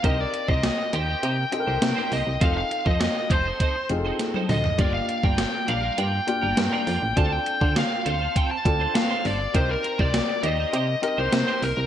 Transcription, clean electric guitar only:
X:1
M:4/4
L:1/16
Q:1/4=101
K:Cdor
V:1 name="Clean electric guitar"
[B,EGc] z2 [B,EGc] z2 [B,EGc] [B,EGc] [B,EGc] z2 [B,EGc] z [B,EGc] [B,EGc] z | [CEAc] z2 [CEAc] z2 [CEAc] [CEAc] [CEAc] z2 [CEAc] z [CEAc] [CEAc] z | [G,DFB] z2 [G,DFB] z2 [G,DFB] [G,DFB] [G,DFB] z2 [G,DFB] z [G,DFB] [G,DFB] z | [CFAc] z2 [CFAc] z2 [CFAc] [CFAc] [CFAc] z2 [CFAc] z [CFAc] [CFAc] z |
[B,EGc] z2 [B,EGc] z2 [B,EGc] [B,EGc] [B,EGc] z2 [B,EGc] z [B,EGc] z2 |]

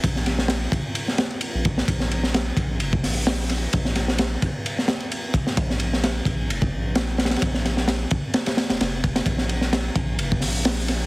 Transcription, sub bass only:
X:1
M:4/4
L:1/16
Q:"Swing 16ths" 1/4=130
K:Cphr
V:1 name="Sub bass" clef=bass
B,,,4- B,,, z B,,, z6 B,,,2 z | B,,,4- B,,, z B,,,2 F,,,2 B,,,4- B,,, z | B,,,4- B,,, z B,,, z8 z | B,,,4- B,,, z B,,,2 F,,,2 B,,,4- B,,, z |
B,,,4- B,,, z B,,, z4 F,,, F,,,3 z | B,,,4- B,,, z B,,,2 F,,,2 B,,,4- B,,, z |]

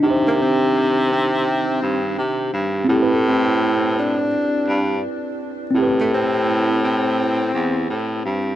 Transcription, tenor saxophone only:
X:1
M:4/4
L:1/16
Q:"Swing 16ths" 1/4=84
K:Am
V:1 name="Tenor saxophone"
z _B, C4 C6 z4 | z A, C4 D6 z4 | z A, C4 C6 z4 |]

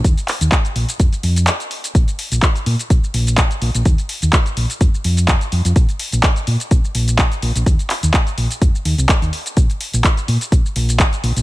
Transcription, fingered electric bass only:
X:1
M:4/4
L:1/16
Q:"Swing 16ths" 1/4=126
K:Ebmix
V:1 name="Fingered electric bass" clef=bass
z3 E,, z2 B,,, z F,, z F,,2 z4 | B,,, z2 B,,, z2 B,, z B,,, z B,,,2 z2 B,,, B,,, | z3 E,, z2 B,,, z F,, z F,,2 z2 F,, F,, | B,,, z2 B,,, z2 B,, z B,,, z B,,,2 z2 B,,, B,,, |
z3 E,, z2 B,,, z F,, z E,, C,, z E,, z2 | B,,, z2 B,,, z2 B,, z B,,, z B,,,2 z2 B,,, B,,, |]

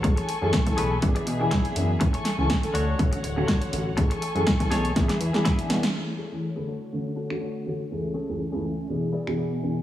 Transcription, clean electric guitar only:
X:1
M:4/4
L:1/16
Q:"Swing 16ths" 1/4=122
K:A
V:1 name="Clean electric guitar"
z6 [GAB]2 z4 [EGc] z3 | z6 [DFc]2 z4 [DFc] z3 | z6 [GAc]2 z4 [EGB] z3 | z2 [GAc]2 z [GAB] [DFc]3 z [DFA] z [DFc] z3 |
z2 [CGAc]2 z [CGAB] z4 [B,EGd] z [B,EGd] z3 |]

